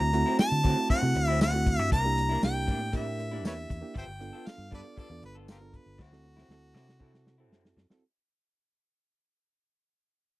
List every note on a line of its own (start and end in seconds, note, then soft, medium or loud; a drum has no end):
0.00 0.23 D2 loud
0.00 0.10 E4 medium
0.00 0.10 F#4 medium
0.00 0.36 A#5 loud
0.00 muted clean electric guitar stroke soft
0.13 0.60 A3 medium
0.13 0.60 C4 medium
0.13 0.60 E4 medium
0.13 0.60 F#4 medium
0.13 muted clean electric guitar stroke soft
0.13 closed hi-hat soft
0.26 0.38 F#3 soft
0.26 0.38 C4 soft
0.26 0.39 E4 soft
0.39 0.87 A5 loud
0.39 muted clean electric guitar stroke soft
0.39 snare loud
0.39 closed hi-hat medium
0.39 tambourine loud
0.52 0.74 D3 medium
0.64 0.77 D3 medium
0.64 0.78 F#3 medium
0.64 0.99 A3 medium
0.64 0.99 C4 medium
0.64 0.78 C4 medium
0.64 0.99 E4 medium
0.64 0.77 E4 medium
0.64 0.99 F#4 medium
0.64 kick medium
0.64 closed hi-hat medium
0.78 muted clean electric guitar stroke soft
0.89 1.03 D3 medium
0.89 1.03 F#3 medium
0.89 1.02 C4 medium
0.89 1.02 E4 medium
0.89 1.37 F#5 loud
0.89 muted fingered electric bass stroke soft
0.89 kick medium
0.89 closed hi-hat medium
1.02 1.13 C3 medium
1.02 1.48 A3 medium
1.02 1.49 C4 medium
1.02 1.49 E4 medium
1.02 1.49 F#4 medium
1.02 muted clean electric guitar stroke soft
1.15 1.79 D2 medium
1.15 muted clean electric guitar stroke soft
1.15 closed hi-hat medium
1.28 1.40 F#3 soft
1.28 1.41 C4 soft
1.28 1.41 E4 medium
1.40 1.54 D3 medium
1.40 1.54 F#3 medium
1.40 1.54 C4 medium
1.40 1.53 E4 medium
1.40 1.89 F#5 loud
1.40 snare loud
1.40 closed hi-hat medium
1.40 tambourine loud
1.53 1.91 A3 medium
1.53 1.92 C4 medium
1.53 1.92 E4 medium
1.53 1.92 F#4 medium
1.53 muted clean electric guitar stroke soft
1.66 muted clean electric guitar stroke soft
1.66 kick medium
1.66 closed hi-hat medium
1.79 1.90 G2 medium
1.91 2.35 C2 loud
1.91 2.05 C3 medium
1.91 2.05 A#3 medium
1.91 2.04 D4 medium
1.91 2.04 E4 medium
1.91 2.40 A#5 loud
1.91 kick loud
1.91 closed hi-hat medium
2.04 2.39 A#3 medium
2.04 2.39 D4 medium
2.04 2.39 E4 medium
2.04 2.39 G4 medium
2.04 muted clean electric guitar stroke soft
2.17 muted clean electric guitar stroke soft
2.17 closed hi-hat medium
2.29 2.41 A#3 soft
2.29 2.42 D4 soft
2.29 2.42 E4 soft
2.42 2.70 C2 medium
2.42 2.88 A#3 medium
2.42 2.89 D4 medium
2.42 2.89 E4 medium
2.42 2.89 G4 medium
2.42 2.97 G5 loud
2.42 muted clean electric guitar stroke soft
2.42 snare loud
2.42 closed hi-hat medium
2.42 tambourine loud
2.67 3.45 A2 medium
2.67 2.81 C3 medium
2.67 2.81 A#3 medium
2.67 2.80 D4 medium
2.67 2.79 E4 medium
2.67 kick medium
2.67 closed hi-hat medium
2.81 muted clean electric guitar stroke soft
2.93 3.06 C3 medium
2.93 3.07 A#3 medium
2.93 3.28 D4 medium
2.93 3.06 D4 medium
2.93 3.29 E4 medium
2.93 3.05 E4 medium
2.93 3.29 G4 medium
2.93 3.28 A#4 medium
2.93 3.46 E5 loud
2.93 kick medium
2.93 closed hi-hat medium
3.07 muted clean electric guitar stroke soft
3.19 muted clean electric guitar stroke soft
3.19 closed hi-hat medium
3.31 3.78 A#3 medium
3.31 3.44 A#3 soft
3.31 3.78 D4 medium
3.31 3.45 D4 soft
3.31 3.44 E4 soft
3.31 3.78 E4 medium
3.31 3.78 G4 medium
3.44 3.66 E2 loud
3.44 3.57 C3 medium
3.44 3.57 A#3 medium
3.44 3.57 D4 medium
3.44 3.56 E4 medium
3.44 3.53 B4 medium
3.44 3.53 C#5 medium
3.44 3.93 E5 medium
3.44 snare loud
3.44 closed hi-hat medium
3.44 tambourine loud
3.57 muted clean electric guitar stroke soft
3.69 3.81 E2 medium
3.69 muted clean electric guitar stroke soft
3.69 kick medium
3.69 closed hi-hat medium
3.81 3.95 A#3 medium
3.81 3.95 D4 medium
3.81 3.95 E4 medium
3.81 3.95 G4 medium
3.81 muted fingered electric bass stroke soft
3.94 4.07 G1 loud
3.94 4.08 G3 medium
3.94 4.08 B3 medium
3.94 4.07 F4 medium
3.94 4.06 A4 medium
3.94 4.04 C5 medium
3.94 4.04 E5 medium
3.94 4.49 G5 loud
3.94 kick loud
3.94 closed hi-hat medium
4.07 4.30 G1 medium
4.07 muted clean electric guitar stroke soft
4.20 4.67 B3 medium
4.20 4.67 D4 medium
4.20 4.67 F4 medium
4.20 4.67 A4 medium
4.20 muted clean electric guitar stroke soft
4.20 closed hi-hat medium
4.33 4.45 B3 soft
4.33 4.46 F4 medium
4.33 4.46 A4 medium
4.46 4.73 F5 loud
4.46 muted clean electric guitar stroke soft
4.46 snare loud
4.46 closed hi-hat medium
4.46 tambourine loud
4.58 4.80 G2 medium
4.71 4.85 G3 medium
4.71 5.06 B3 medium
4.71 4.85 B3 medium
4.71 5.07 D4 medium
4.71 5.07 F4 medium
4.71 4.85 F4 medium
4.71 5.07 A4 medium
4.71 4.82 A4 medium
4.71 4.83 A4 medium
4.71 4.80 B4 medium
4.71 4.97 D5 medium
4.71 kick medium
4.71 closed hi-hat medium
4.85 muted clean electric guitar stroke soft
4.96 5.10 G3 medium
4.96 5.10 B3 medium
4.96 5.10 F4 medium
4.96 5.09 A4 medium
4.96 5.22 D5 medium
4.96 muted fingered electric bass stroke soft
4.96 kick medium
4.96 closed hi-hat medium
5.10 5.21 E2 medium
5.10 5.56 B3 medium
5.10 5.56 D4 medium
5.10 5.56 F4 medium
5.10 5.57 A4 medium
5.10 muted clean electric guitar stroke soft
5.22 5.76 G1 medium
5.22 5.36 B4 medium
5.22 muted clean electric guitar stroke soft
5.22 closed hi-hat medium
5.35 5.48 B3 soft
5.35 5.49 F4 soft
5.35 5.48 A4 soft
5.48 5.61 G3 medium
5.48 5.62 B3 medium
5.48 5.61 F4 medium
5.48 5.58 F4 medium
5.48 5.57 G4 medium
5.48 5.60 A4 medium
5.48 5.78 A#4 medium
5.48 snare loud
5.48 closed hi-hat medium
5.48 tambourine loud
5.61 5.99 B3 medium
5.61 5.99 D4 medium
5.61 5.99 F4 medium
5.61 6.00 A4 medium
5.61 muted clean electric guitar stroke soft
5.73 6.04 B4 medium
5.73 muted clean electric guitar stroke soft
5.73 kick medium
5.73 closed hi-hat medium
5.86 5.97 G1 medium
5.98 6.42 D2 loud
5.98 6.12 D3 medium
5.98 6.12 F#3 medium
5.98 6.12 C4 medium
5.98 6.11 E4 medium
5.98 kick loud
5.98 snare medium
6.02 7.53 F#4 medium
6.12 6.46 C4 medium
6.12 6.46 E4 medium
6.12 6.47 F#4 medium
6.12 6.47 A4 medium
6.12 muted clean electric guitar stroke soft
6.12 snare medium
6.24 muted clean electric guitar stroke soft
6.36 6.49 F#3 soft
6.36 6.49 C4 soft
6.36 6.49 E4 medium
6.36 snare medium
6.49 6.74 D2 medium
6.49 6.96 C4 medium
6.49 6.96 E4 medium
6.49 6.97 F#4 medium
6.49 6.97 A4 medium
6.49 muted clean electric guitar stroke soft
6.49 snare medium
6.74 7.51 C3 medium
6.74 6.88 D3 medium
6.74 6.88 F#3 medium
6.74 6.87 C4 medium
6.74 6.87 E4 medium
6.74 snare medium
6.88 muted clean electric guitar stroke soft
6.88 snare medium
7.00 7.13 D3 medium
7.00 7.14 F#3 medium
7.00 7.35 C4 medium
7.00 7.13 C4 medium
7.00 7.35 E4 medium
7.00 7.12 E4 loud
7.00 7.35 F#4 medium
7.00 7.36 A4 loud
7.00 kick medium
7.13 muted clean electric guitar stroke soft
7.13 snare medium
7.25 muted clean electric guitar stroke soft
7.25 snare medium
7.38 7.51 F#3 soft
7.38 7.85 C4 medium
7.38 7.52 C4 soft
7.38 7.51 E4 soft
7.38 7.85 E4 medium
7.38 7.85 F#4 medium
7.38 7.86 A4 loud
7.51 7.73 F#2 medium
7.51 7.64 D3 medium
7.51 7.65 F#3 medium
7.51 7.64 C4 medium
7.51 7.63 E4 medium
7.51 snare medium
7.64 muted clean electric guitar stroke medium
7.64 snare medium
7.77 7.88 F#2 medium
7.77 muted clean electric guitar stroke soft
7.77 snare medium
7.90 8.02 C4 medium
7.90 8.03 E4 medium
7.90 8.03 F#4 medium
7.90 8.03 A4 loud
7.90 muted fingered electric bass stroke soft
7.90 snare medium